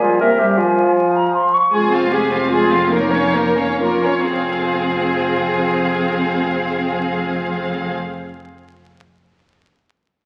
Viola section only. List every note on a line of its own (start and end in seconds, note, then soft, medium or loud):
1.72 1.91 G#3 soft
1.93 2.12 C4 soft
2.12 2.32 G#3 soft
2.32 2.52 C4 soft
2.53 2.71 G#3 soft
2.73 2.93 C4 soft
2.93 3.12 A#3 soft
3.15 3.36 C#4 soft
3.35 3.58 A#3 soft
3.58 3.81 C#4 soft
3.81 4.04 A#3 soft
4.05 4.30 C#4 soft
4.29 7.92 C4 soft